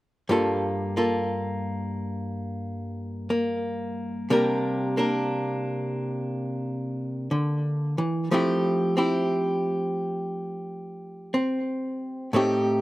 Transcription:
0, 0, Header, 1, 2, 480
1, 0, Start_track
1, 0, Key_signature, -2, "minor"
1, 0, Tempo, 1002841
1, 143, Time_signature, 4, 2, 24, 8
1, 6132, End_track
2, 0, Start_track
2, 0, Title_t, "Hollow-body jazz guitar"
2, 0, Program_c, 0, 26
2, 140, Note_on_c, 0, 43, 59
2, 141, Note_on_c, 0, 55, 45
2, 145, Note_on_c, 0, 58, 45
2, 148, Note_on_c, 0, 65, 50
2, 152, Note_on_c, 0, 69, 48
2, 461, Note_off_c, 0, 65, 0
2, 462, Note_off_c, 0, 58, 0
2, 462, Note_off_c, 0, 69, 0
2, 464, Note_on_c, 0, 58, 48
2, 466, Note_on_c, 0, 65, 48
2, 470, Note_on_c, 0, 69, 43
2, 1574, Note_off_c, 0, 58, 0
2, 1580, Note_on_c, 0, 58, 45
2, 2043, Note_off_c, 0, 55, 0
2, 2046, Note_off_c, 0, 65, 0
2, 2047, Note_off_c, 0, 69, 0
2, 2058, Note_off_c, 0, 58, 0
2, 2060, Note_on_c, 0, 48, 62
2, 2061, Note_off_c, 0, 43, 0
2, 2061, Note_on_c, 0, 55, 49
2, 2063, Note_on_c, 0, 58, 53
2, 2066, Note_on_c, 0, 62, 36
2, 2070, Note_on_c, 0, 70, 59
2, 2374, Note_off_c, 0, 58, 0
2, 2380, Note_off_c, 0, 62, 0
2, 2380, Note_on_c, 0, 58, 48
2, 2381, Note_off_c, 0, 70, 0
2, 2384, Note_on_c, 0, 62, 51
2, 2389, Note_on_c, 0, 70, 47
2, 3497, Note_off_c, 0, 48, 0
2, 3499, Note_on_c, 0, 50, 51
2, 3818, Note_off_c, 0, 50, 0
2, 3820, Note_on_c, 0, 52, 49
2, 3962, Note_off_c, 0, 55, 0
2, 3966, Note_off_c, 0, 70, 0
2, 3977, Note_off_c, 0, 52, 0
2, 3979, Note_on_c, 0, 53, 62
2, 3982, Note_on_c, 0, 57, 53
2, 3983, Note_off_c, 0, 58, 0
2, 3985, Note_off_c, 0, 62, 0
2, 3987, Note_on_c, 0, 60, 44
2, 3990, Note_on_c, 0, 64, 54
2, 3993, Note_on_c, 0, 67, 54
2, 4290, Note_off_c, 0, 60, 0
2, 4291, Note_off_c, 0, 67, 0
2, 4292, Note_on_c, 0, 60, 45
2, 4293, Note_off_c, 0, 64, 0
2, 4297, Note_on_c, 0, 67, 53
2, 4299, Note_on_c, 0, 64, 52
2, 5419, Note_off_c, 0, 60, 0
2, 5427, Note_on_c, 0, 60, 53
2, 5882, Note_off_c, 0, 53, 0
2, 5883, Note_off_c, 0, 64, 0
2, 5884, Note_off_c, 0, 57, 0
2, 5886, Note_off_c, 0, 60, 0
2, 5902, Note_off_c, 0, 67, 0
2, 5902, Note_on_c, 0, 45, 63
2, 5907, Note_on_c, 0, 57, 52
2, 5911, Note_on_c, 0, 60, 48
2, 5912, Note_on_c, 0, 63, 45
2, 5917, Note_on_c, 0, 67, 58
2, 6132, Note_off_c, 0, 45, 0
2, 6132, Note_off_c, 0, 57, 0
2, 6132, Note_off_c, 0, 60, 0
2, 6132, Note_off_c, 0, 63, 0
2, 6132, Note_off_c, 0, 67, 0
2, 6132, End_track
0, 0, End_of_file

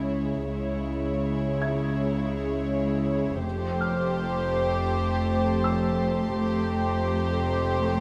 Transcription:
0, 0, Header, 1, 8, 480
1, 0, Start_track
1, 0, Tempo, 731707
1, 336, Time_signature, 4, 2, 24, 8
1, 5249, End_track
2, 0, Start_track
2, 0, Title_t, "Felt piano"
2, 0, Program_c, 0, 0
2, 0, Control_c, 0, 64, 127
2, 0, Note_on_c, 0, 90, 26
2, 310, Note_off_c, 0, 90, 0
2, 1058, Note_on_c, 0, 76, 26
2, 1060, Note_on_c, 0, 92, 35
2, 2268, Control_c, 0, 64, 0
2, 2378, Control_c, 0, 64, 127
2, 2471, Note_off_c, 0, 76, 0
2, 2472, Note_off_c, 0, 92, 0
2, 2498, Note_on_c, 0, 89, 42
2, 3701, Note_on_c, 0, 88, 48
2, 3911, Note_off_c, 0, 89, 0
2, 5112, Note_off_c, 0, 88, 0
2, 5135, Note_on_c, 0, 84, 35
2, 5249, Note_off_c, 0, 84, 0
2, 5249, End_track
3, 0, Start_track
3, 0, Title_t, "Violin section"
3, 0, Program_c, 1, 48
3, 2253, Note_on_c, 1, 84, 40
3, 2254, Note_on_c, 1, 81, 38
3, 4576, Note_off_c, 1, 81, 0
3, 4576, Note_on_c, 1, 82, 38
3, 5249, Note_off_c, 1, 82, 0
3, 5249, Note_off_c, 1, 84, 0
3, 5249, End_track
4, 0, Start_track
4, 0, Title_t, "Violin section"
4, 0, Program_c, 2, 48
4, 0, Note_on_c, 2, 73, 35
4, 308, Note_off_c, 2, 73, 0
4, 323, Note_on_c, 2, 73, 38
4, 2223, Note_off_c, 2, 73, 0
4, 2255, Note_on_c, 2, 72, 52
4, 4161, Note_off_c, 2, 72, 0
4, 4169, Note_on_c, 2, 72, 58
4, 5249, Note_off_c, 2, 72, 0
4, 5249, End_track
5, 0, Start_track
5, 0, Title_t, "Violin section"
5, 0, Program_c, 3, 48
5, 0, Note_on_c, 3, 64, 36
5, 311, Note_off_c, 3, 64, 0
5, 336, Note_on_c, 3, 64, 38
5, 2230, Note_off_c, 3, 64, 0
5, 2258, Note_on_c, 3, 67, 50
5, 4154, Note_off_c, 3, 67, 0
5, 4162, Note_on_c, 3, 67, 58
5, 5249, Note_off_c, 3, 67, 0
5, 5249, End_track
6, 0, Start_track
6, 0, Title_t, "Viola section"
6, 0, Program_c, 4, 48
6, 0, Note_on_c, 4, 56, 35
6, 310, Note_off_c, 4, 56, 0
6, 339, Note_on_c, 4, 56, 39
6, 2231, Note_off_c, 4, 56, 0
6, 2253, Note_on_c, 4, 57, 50
6, 4148, Note_off_c, 4, 57, 0
6, 4175, Note_on_c, 4, 57, 57
6, 5249, Note_off_c, 4, 57, 0
6, 5249, End_track
7, 0, Start_track
7, 0, Title_t, "Cello section"
7, 0, Program_c, 5, 48
7, 0, Note_on_c, 5, 49, 36
7, 311, Note_off_c, 5, 49, 0
7, 336, Note_on_c, 5, 49, 38
7, 2230, Note_off_c, 5, 49, 0
7, 2254, Note_on_c, 5, 41, 51
7, 4149, Note_off_c, 5, 41, 0
7, 4169, Note_on_c, 5, 41, 58
7, 5249, Note_off_c, 5, 41, 0
7, 5249, End_track
8, 0, Start_track
8, 0, Title_t, "Double bass section"
8, 0, Program_c, 6, 48
8, 0, Note_on_c, 6, 37, 35
8, 311, Note_off_c, 6, 37, 0
8, 335, Note_on_c, 6, 37, 38
8, 2229, Note_off_c, 6, 37, 0
8, 2255, Note_on_c, 6, 29, 46
8, 4149, Note_off_c, 6, 29, 0
8, 4179, Note_on_c, 6, 29, 57
8, 5249, Note_off_c, 6, 29, 0
8, 5249, End_track
0, 0, End_of_file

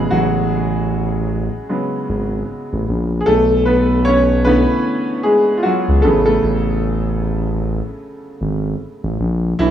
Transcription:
0, 0, Header, 1, 3, 480
1, 0, Start_track
1, 0, Tempo, 789474
1, 63, Time_signature, 4, 2, 24, 8
1, 5901, End_track
2, 0, Start_track
2, 0, Title_t, "Grand piano"
2, 0, Program_c, 0, 0
2, 0, Control_c, 0, 64, 127
2, 0, Note_on_c, 0, 49, 49
2, 0, Note_on_c, 0, 54, 45
2, 0, Note_on_c, 0, 56, 60
2, 0, Note_on_c, 0, 59, 53
2, 0, Note_on_c, 0, 68, 78
2, 64, Note_on_c, 0, 66, 74
2, 69, Note_off_c, 0, 54, 0
2, 70, Note_off_c, 0, 68, 0
2, 78, Note_on_c, 0, 54, 60
2, 519, Note_off_c, 0, 66, 0
2, 526, Note_off_c, 0, 54, 0
2, 1019, Note_off_c, 0, 49, 0
2, 1023, Note_off_c, 0, 59, 0
2, 1028, Note_on_c, 0, 49, 38
2, 1030, Note_on_c, 0, 54, 39
2, 1031, Note_off_c, 0, 56, 0
2, 1031, Note_on_c, 0, 56, 36
2, 1032, Note_on_c, 0, 59, 45
2, 1242, Note_off_c, 0, 49, 0
2, 1243, Note_off_c, 0, 54, 0
2, 1244, Note_off_c, 0, 56, 0
2, 1244, Note_off_c, 0, 59, 0
2, 1949, Note_on_c, 0, 68, 64
2, 1982, Note_on_c, 0, 69, 94
2, 1983, Note_off_c, 0, 68, 0
2, 1992, Control_c, 0, 64, 0
2, 1996, Note_on_c, 0, 57, 76
2, 2085, Control_c, 0, 64, 127
2, 2213, Note_off_c, 0, 57, 0
2, 2222, Note_on_c, 0, 71, 79
2, 2230, Note_off_c, 0, 69, 0
2, 2236, Note_on_c, 0, 59, 63
2, 2276, Note_off_c, 0, 71, 0
2, 2288, Note_off_c, 0, 59, 0
2, 2461, Note_on_c, 0, 73, 89
2, 2479, Note_on_c, 0, 61, 67
2, 2695, Note_off_c, 0, 61, 0
2, 2703, Note_on_c, 0, 71, 90
2, 2710, Note_off_c, 0, 73, 0
2, 2711, Note_on_c, 0, 50, 49
2, 2714, Note_on_c, 0, 52, 45
2, 2717, Note_on_c, 0, 57, 47
2, 2719, Note_on_c, 0, 61, 54
2, 2721, Note_on_c, 0, 59, 71
2, 3168, Note_off_c, 0, 59, 0
2, 3182, Note_on_c, 0, 68, 79
2, 3197, Note_on_c, 0, 56, 60
2, 3198, Note_off_c, 0, 71, 0
2, 3382, Note_off_c, 0, 56, 0
2, 3390, Note_on_c, 0, 65, 57
2, 3395, Note_off_c, 0, 68, 0
2, 3422, Note_on_c, 0, 66, 72
2, 3424, Note_off_c, 0, 65, 0
2, 3439, Note_on_c, 0, 54, 59
2, 3643, Note_off_c, 0, 50, 0
2, 3644, Note_off_c, 0, 52, 0
2, 3646, Note_off_c, 0, 57, 0
2, 3647, Note_off_c, 0, 61, 0
2, 3655, Note_off_c, 0, 54, 0
2, 3660, Note_on_c, 0, 69, 78
2, 3670, Note_off_c, 0, 66, 0
2, 3670, Note_on_c, 0, 49, 49
2, 3671, Control_c, 0, 64, 0
2, 3671, Note_on_c, 0, 54, 43
2, 3674, Note_on_c, 0, 68, 45
2, 3675, Note_on_c, 0, 59, 55
2, 3677, Note_on_c, 0, 57, 62
2, 3785, Control_c, 0, 64, 127
2, 3795, Note_off_c, 0, 69, 0
2, 3804, Note_off_c, 0, 57, 0
2, 3804, Note_on_c, 0, 69, 76
2, 3822, Note_on_c, 0, 57, 62
2, 4004, Note_off_c, 0, 49, 0
2, 4004, Note_off_c, 0, 54, 0
2, 4006, Note_off_c, 0, 68, 0
2, 4007, Note_off_c, 0, 59, 0
2, 5557, Note_off_c, 0, 69, 0
2, 5567, Note_off_c, 0, 57, 0
2, 5830, Note_on_c, 0, 64, 93
2, 5832, Control_c, 0, 64, 0
2, 5838, Note_on_c, 0, 52, 69
2, 5901, Note_off_c, 0, 52, 0
2, 5901, Note_off_c, 0, 64, 0
2, 5901, End_track
3, 0, Start_track
3, 0, Title_t, "Analog synth bass"
3, 0, Program_c, 1, 38
3, 73, Note_on_c, 1, 33, 104
3, 907, Note_off_c, 1, 33, 0
3, 1273, Note_on_c, 1, 32, 85
3, 1480, Note_off_c, 1, 32, 0
3, 1658, Note_on_c, 1, 33, 83
3, 1738, Note_off_c, 1, 33, 0
3, 1755, Note_on_c, 1, 34, 94
3, 1961, Note_off_c, 1, 34, 0
3, 1992, Note_on_c, 1, 35, 106
3, 2827, Note_off_c, 1, 35, 0
3, 3577, Note_on_c, 1, 37, 91
3, 3657, Note_off_c, 1, 37, 0
3, 3675, Note_on_c, 1, 33, 96
3, 3881, Note_off_c, 1, 33, 0
3, 3914, Note_on_c, 1, 33, 106
3, 4748, Note_off_c, 1, 33, 0
3, 5113, Note_on_c, 1, 32, 89
3, 5320, Note_off_c, 1, 32, 0
3, 5497, Note_on_c, 1, 33, 77
3, 5577, Note_off_c, 1, 33, 0
3, 5593, Note_on_c, 1, 34, 96
3, 5800, Note_off_c, 1, 34, 0
3, 5830, Note_on_c, 1, 35, 108
3, 5901, Note_off_c, 1, 35, 0
3, 5901, End_track
0, 0, End_of_file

